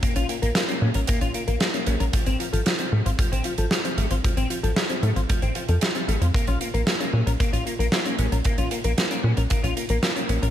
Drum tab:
HH |xxxxxx-xxxxxxxxx|xxxxxx-xxxxxxxxx|xxxxxxxxxxxxxxxx|xxxxxx-xxxxxxxxx|
SD |----o-------o---|----o-------o---|----o-------o---|----o-------o---|
BD |o-------o-------|o-------o-------|o-------o-------|o-------o-------|

HH |xxxxxx-xxxxxxxxx|
SD |----o-------o---|
BD |o-------o-------|